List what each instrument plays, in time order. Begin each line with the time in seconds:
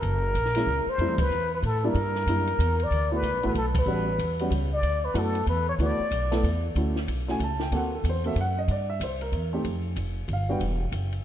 Already playing: muted trumpet A#4
0.02 upright bass F#1, kick, ride
0.34 upright bass A#1, kick, hi-hat pedal, ride
0.45 snare
0.55 upright piano G#3 A#3 C#4 E4, snare, ride
0.66 upright bass C#2, kick
0.86 muted trumpet C5, muted upright bass stroke
0.98 upright bass F2, upright piano G3 A3 C4 E4, kick, ride
1.08 upright bass E2
1.18 upright bass C2, muted trumpet B4, kick, ride
1.29 upright bass E2, hi-hat pedal
1.54 muted trumpet B4
1.63 upright bass A2, muted trumpet A4, kick, ride
1.84 upright piano G3 A#3 D4 E4, muted trumpet A#4
1.94 upright bass G2, kick, ride
2.15 snare
2.26 upright bass F#2, upright piano G3 A#3 D4 E4, kick, hi-hat pedal, ride
2.47 ride
2.59 upright bass E2, kick, hi-hat pedal, ride
2.80 muted trumpet D5, ride
2.91 upright bass D2, kick, ride
3.11 upright piano A3 B3 E4 F#4, muted trumpet B4
3.23 upright bass C#2, kick, hi-hat pedal, ride
3.34 upright bass B1
3.43 upright bass A1, upright piano A3 B3 E4 F#4, muted trumpet B4, ride
3.55 upright bass B1, muted trumpet A4, kick, ride
3.75 muted trumpet B4, kick, ride
3.86 upright bass A1, upright piano G3 B3 C#4 F#4
4.19 upright bass E2, kick, hi-hat pedal, ride
4.39 upright piano G3 B3 C#4 F#4, ride
4.50 upright bass C#2, kick, ride
4.73 muted trumpet D5
4.82 upright bass D2, kick, ride
5.04 muted trumpet B4
5.14 upright bass F#2, upright piano A3 B3 E4 F#4, muted trumpet A4, kick, hi-hat pedal, ride
5.35 ride
5.47 upright bass E2, muted trumpet B4, kick, ride
5.69 muted trumpet C#5
5.79 upright bass D2, upright piano A3 B3 E4 F#4, muted trumpet D5, kick, ride
5.99 muted upright bass stroke
6.11 upright bass B1, kick, hi-hat pedal, ride
6.31 upright piano A3 B3 E4 A4, snare, ride
6.43 upright bass E2, kick, ride
6.75 upright bass D2, upright piano A3 C#4 E4 F#4, kick, ride
6.96 snare
7.08 upright bass B1, kick, hi-hat pedal, ride
7.28 upright piano A3 C#4 E4 F#4 G#5, snare
7.40 upright bass C#2, kick, ride
7.44 upright piano A5
7.59 upright piano G5, snare
7.71 upright bass D2, upright piano A#3 C4 F#4 A4, kick, ride
7.77 upright piano F#5
7.95 upright piano A4
8.04 upright bass E2, kick, hi-hat pedal, ride
8.09 upright piano C5
8.24 upright piano A#3 C4 F#4 A4 E5, ride
8.35 upright bass F#2, kick, ride
8.41 upright piano F#5
8.59 upright piano D#5
8.68 upright bass G2, upright piano D5, kick, ride
8.90 upright piano E5
9.00 upright bass C2, upright piano C5, kick, hi-hat pedal, ride
9.21 upright piano A#4, ride
9.32 upright bass E2, kick, ride
9.53 upright piano A3 C4 D#4 G4
9.64 upright bass F2, kick, ride
9.96 upright bass F1, kick, hi-hat pedal, ride
10.28 upright bass G1, kick, ride
10.33 upright piano F5
10.49 upright piano G3 B3 D4 F#4 G5
10.60 upright bass E1, kick, ride
10.92 upright bass F#1, kick, hi-hat pedal, ride
11.12 ride